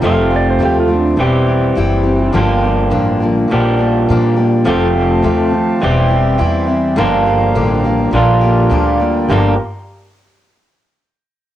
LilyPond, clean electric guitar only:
\new Staff \with { instrumentName = "Clean electric guitar" } { \time 4/4 \key g \dorian \tempo 4 = 104 <f a c' g'>2 <e g c' g'>2 | <g, d f bes d' g'>2 <bes, f g d' g'>2 | <f a c' g'>2 <e g c' g'>2 | <g, d f bes d' g'>2 <bes, d g d' f'>2 |
<g, d f bes d' g'>8 r2. r8 | }